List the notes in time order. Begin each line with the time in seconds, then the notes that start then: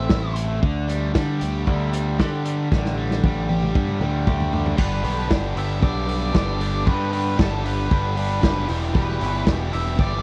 Already playing: A3 C4 E5
0.09 A1 E4, kick, snare
0.36 A3, closed hi-hat
0.62 D2 D3, kick
0.88 G3, closed hi-hat
1.14 D3 G3, kick, snare
1.40 D2 G4, closed hi-hat
1.67 D2 D3, kick
1.93 G3, closed hi-hat
2.19 D3 G4, kick, snare
2.45 D3, closed hi-hat
2.72 A1 D3, kick, snare
2.85 snare
2.97 G3
3.11 snare
3.24 A1 G3, kick, high tom
3.49 G4, high tom
3.62 mid tom
3.75 G2 D3, kick
3.88 mid tom
4.00 D2 G3, mid tom
4.26 D2 G4, kick, mid tom
4.40 floor tom
4.52 D3, floor tom
4.66 floor tom
4.76 G1 G2 D3 G3 B3 D4 G4 B4 B5, kick, crash
5.02 B1 G2 D3 G3 B3 D4 G4, open hi-hat
5.28 G1 G2 D3 G3 B3 D4 G4, kick, snare
5.55 G1 G2 D3 G3 B3 D4 G4 E5 E6, open hi-hat
5.80 B1 G2 D3 G3 B3 D4 G4 D5, kick
5.85 D6
6.07 G2 D3 G3 B3 D4 G4, open hi-hat
6.33 G1 G2 D3 G3 B3 D4 G4 D6, kick, snare
6.37 D5
6.59 G2 D3 G3 B3 D4 G4, open hi-hat
6.85 G2 D3 G3 B3 D4 G4 B4 B5, kick
7.11 G2 D3 G3 B3 D4 G4 B4 B5, open hi-hat
7.37 G1 G2 D3 G3 B3 D4 G4 A4 A5, kick, snare
7.63 G2 D3 G3 B3 D4 G4 B4 B5, open hi-hat
7.90 G1 G2 D3 G3 B3 D4 G4, kick
8.16 G2 D3 G3 B3 D4 G4, open hi-hat
8.41 F#1 G2 D3 G3 B3 D4 G4, kick, snare
8.67 E1 E2 B2 E3 G3 E4 G4, open hi-hat
8.94 E1 E2 B2 E3 G3 E4 G4 B4 B5, kick
9.20 G1 E2 B2 E3 G3 E4 G4, open hi-hat
9.45 E1 E2 B2 E3 G3 E4 G4, kick, snare
9.70 E1 E2 B2 E3 G3 E4 G4 E5 E6, open hi-hat
9.97 G1 E2 B2 E3 G3 E4 G4 D5 D6, kick